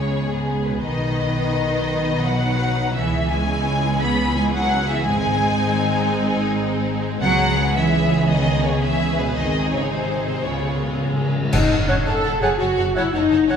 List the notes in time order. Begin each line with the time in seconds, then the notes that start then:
Already playing: C#2 C#3 G#3 B3 C#4 G#4 C#5
0.29 G#2 G#4
0.65 B2 B4
0.82 B1 D#3 D#4 B4 D#5
2.24 F#3 F#5
2.95 C#2 E3 B3 C#4 G#4 E5
3.31 G#3 G#5
4.01 B3 B5
4.36 G#3 G#5
4.54 F#3 F#5
4.89 E3 E5
5.07 G#1 G#2 G#3 C4 D#4 G#5
7.22 C#2 C#3 F#3 B3 C#4 G#4 F#5
7.76 E3 E5
8.28 D#3 D#5
8.64 C#3 C#5
8.82 E3 E5
9.17 B2 B4
9.35 G#1 D#3 G#3 C4 D#4 D#5
9.72 C#3 C#5
9.90 C3 C5
10.26 C3 C5
10.44 C#2 C#3 B3 F4 C#5
10.51 C#3
10.60 C#3
10.67 C#3
10.75 C#3
10.83 C#3
10.91 C#3
10.98 C#3
11.05 C#3
11.13 C#3
11.21 C#3
11.29 C#3
11.36 C#3
11.43 C#3
11.52 F#1 F#2 D#4 C#5 D#5 F#5 A5, concert bass drum, crash
11.70 F#1 F#2 C#5 F#5 A5
11.88 F#1 F#2 C#4 C#5 F#5 A5
12.05 F#1 F#2 A4 C#5 F#5 A5
12.24 F#1 F#2 C#5 F#5 A5
12.41 F#1 F#2 G#4 C#5 F#5 G#5 A5
12.59 F#1 F#2 F#4 C#5 F#5 A5
12.77 F#1 F#2 C#5 F#5 A5
12.94 F#1 F#2 E4 C#5 E5 F#5 A5
13.13 F#1 F#2 D#4 C#5 D#5 F#5 A5
13.30 F#1 F#2 C#5 F#5 A5
13.48 F#1 F#2 C#4 C#5 F#5 A5